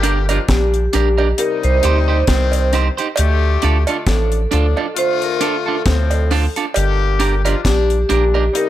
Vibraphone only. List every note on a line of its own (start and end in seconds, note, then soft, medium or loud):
0.51 1.42 G4 medium
1.39 1.65 A#4 loud
1.64 1.84 C5 loud
4.08 4.93 A4 medium
4.98 5.21 C5 loud
5.24 5.41 A#4 medium
5.45 6.28 A4 medium
7.67 8.58 G4 medium
8.57 8.69 A#4 loud